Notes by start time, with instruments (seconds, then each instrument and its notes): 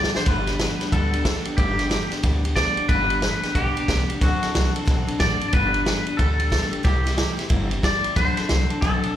Already playing: steel-string acoustic guitar G3 B3 D4 G4
0.04 snare
0.13 steel-string acoustic guitar G3 B3 D4 G4, clean electric guitar C5, muted upright bass stroke, snare
0.26 upright bass G1, steel-string acoustic guitar G2 D3 G3 B3 D4 G4, clean electric guitar B4, kick, snare, ride
0.47 steel-string acoustic guitar G3 B3 D4 G4, snare, ride
0.59 steel-string acoustic guitar G3 B3 D4 G4, snare, ride
0.80 steel-string acoustic guitar G3 B3 D4 G4, muted upright bass stroke, snare, ride
0.92 upright bass D2, steel-string acoustic guitar G2 D3 G3 B3 D4 G4, clean electric guitar A4, kick, ride
1.13 steel-string acoustic guitar G3 B3 D4 G4, ride
1.25 steel-string acoustic guitar G3 B3 D4 G4, kick, snare, ride
1.45 steel-string acoustic guitar G3 B3 D4 G4, muted upright bass stroke, ride
1.57 upright bass G1, steel-string acoustic guitar G2 D3 G3 B3 D4 G4, clean electric guitar G4, kick, ride
1.77 steel-string acoustic guitar G3 B3 D4 G4, snare, ride
1.89 steel-string acoustic guitar G3 B3 D4 G4, snare, ride
2.10 steel-string acoustic guitar G3 B3 D4 G4, muted upright bass stroke, snare, ride
2.23 upright bass D2, steel-string acoustic guitar G2 D3 G3 B3 D4 G4, kick, snare, ride
2.44 steel-string acoustic guitar G3 B3 D4 G4, ride
2.55 steel-string acoustic guitar G3 B3 D4 G4, clean electric guitar D5, kick, snare, ride
2.76 steel-string acoustic guitar G3 B3 D4 G4, muted upright bass stroke, ride
2.88 upright bass G1, steel-string acoustic guitar G2 D3 G3 B3 D4 G4, clean electric guitar B4, kick, ride
3.10 steel-string acoustic guitar G3 B3 D4 G4, ride
3.22 steel-string acoustic guitar G3 D4 G4, snare, ride
3.42 steel-string acoustic guitar G3 B3 D4 G4, muted upright bass stroke, snare, ride
3.55 upright bass B1, steel-string acoustic guitar G2 D3 G3 B3 D4 G4, clean electric guitar G4, kick, ride
3.75 steel-string acoustic guitar G3 B3 D4 G4, muted upright bass stroke, ride
3.88 upright bass C2, steel-string acoustic guitar G3 B3 D4 G4, kick, snare, ride
4.10 steel-string acoustic guitar G3 B3 D4 G4, ride
4.21 upright bass D2, steel-string acoustic guitar D3 F#3 C4 D4 A4, clean electric guitar F#4, kick, snare, ride
4.41 steel-string acoustic guitar C4 D4 A4, muted upright bass stroke, snare, ride
4.54 upright bass C2, steel-string acoustic guitar F#3 C4 D4 A4, snare, ride
4.74 steel-string acoustic guitar C4 D4 A4, ride
4.85 upright bass B1, steel-string acoustic guitar D3 F#3 C4 D4 A4, kick, snare, ride
5.07 steel-string acoustic guitar C4 D4 A4, muted upright bass stroke, ride
5.19 upright bass A1, steel-string acoustic guitar F#3 C4 D4 A4, clean electric guitar D5, kick, snare, ride
5.40 steel-string acoustic guitar C4 D4 A4, muted upright bass stroke, ride
5.48 clean electric guitar D5
5.53 upright bass G1, steel-string acoustic guitar G2 D3 G3 B3 D4 G4, clean electric guitar B4, kick, ride
5.73 steel-string acoustic guitar G3 B3 D4 G4, ride
5.85 steel-string acoustic guitar G3 B3 D4 G4, snare, ride
6.06 steel-string acoustic guitar G3 B3 D4 G4, muted upright bass stroke, ride
6.17 upright bass D2, steel-string acoustic guitar G2 D3 G3 B3 D4 G4, clean electric guitar A4, kick, ride
6.39 steel-string acoustic guitar G3 B3 D4 G4, ride
6.50 steel-string acoustic guitar G3 B3 D4 G4, kick, snare, ride
6.71 steel-string acoustic guitar G3 B3 D4 G4, muted upright bass stroke, ride
6.83 upright bass C2, steel-string acoustic guitar C3 G3 C4 E4 G4, clean electric guitar G4, kick, snare, ride
7.04 steel-string acoustic guitar C4 E4 G4, snare, ride
7.16 steel-string acoustic guitar G3 C4 E4 G4, snare, ride
7.37 steel-string acoustic guitar C4 E4 G4, muted upright bass stroke, snare, ride
7.49 upright bass G1, steel-string acoustic guitar C3 G3 C4 E4 G4, kick, ride
7.71 steel-string acoustic guitar C4 E4 G4, ride
7.83 steel-string acoustic guitar G3 C4 E4 G4, clean electric guitar D5, kick, snare, ride
8.04 steel-string acoustic guitar C4 E4 G4, muted upright bass stroke, ride
8.16 upright bass D2, steel-string acoustic guitar D3 F#3 C4 D4 A4, clean electric guitar C5, kick, snare, ride
8.37 steel-string acoustic guitar C4 D4 A4, snare, ride
8.49 upright bass C2, steel-string acoustic guitar F#3 C4 D4 A4, snare, ride
8.70 steel-string acoustic guitar C4 D4 A4, ride
8.81 upright bass B1, steel-string acoustic guitar D3 F#3 C4 D4 A4, clean electric guitar A4, kick, snare, ride
9.03 steel-string acoustic guitar C4 D4 A4, muted upright bass stroke, ride